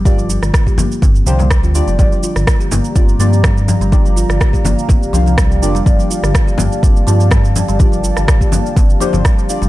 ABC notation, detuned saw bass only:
X:1
M:4/4
L:1/16
Q:"Swing 16ths" 1/4=124
K:Gm
V:1 name="Detuned saw bass" clef=bass
G,,,3 G,,, z2 G,,, z G,,,2 C,,3 D,,2 F,,, | G,,, z2 G,,, z2 G,,, z G,,,2 G,,4- G,, G,,,- | G,,,3 G,,, z2 G,,, z G,,,2 C,,4 F,,,2 | G,,, z2 G,,, z2 G,,, z G,,,2 G,,4- G,, G,,,- |
G,,,3 G,,, z2 G,,, z G,,,2 z G,,, z3 F,,, |]